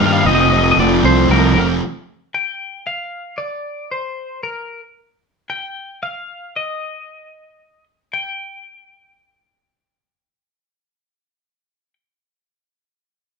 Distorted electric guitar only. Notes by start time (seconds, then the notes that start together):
Already playing: D#3
0.00 G3 A#3 D#4
0.26 F2 C3 F3 A3 C4
0.51 F3 A3 C4
0.77 C3 F3 A3 C4
1.03 F3 A3 C4
1.29 F2 C3 F3 A3 C4
1.55 F3 A3 C4